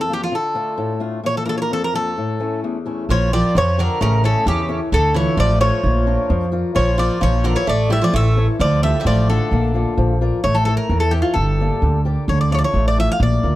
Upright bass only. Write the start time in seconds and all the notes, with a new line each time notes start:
3.09 A#1
3.55 F2
4.01 A1
4.46 E2
4.92 D2
5.37 A1
5.84 A#1
6.30 F2
6.76 A#1
7.22 A#1
7.67 A1
8.13 A1
8.59 D2
9.05 A1
9.51 A#1
9.97 A#1
10.44 A1
10.89 E2
11.36 G1
11.82 D2
12.28 D2
12.74 A1
13.20 A#1
13.43 D2